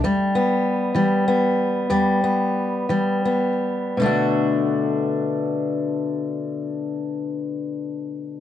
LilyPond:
\new Staff \with { instrumentName = "Steel-string acoustic guitar" } { \clef bass \time 6/8 \key b \minor \tempo 4. = 54 << { g8 b4 g8 b4 | g8 b4 g8 b4 | <d a d' fis'>2.~ | <d a d' fis'>2. | } \\ { e,4 r8 e4 r8 | e,4 r8 e4 r8 | b,2.~ | b,2. | } >> }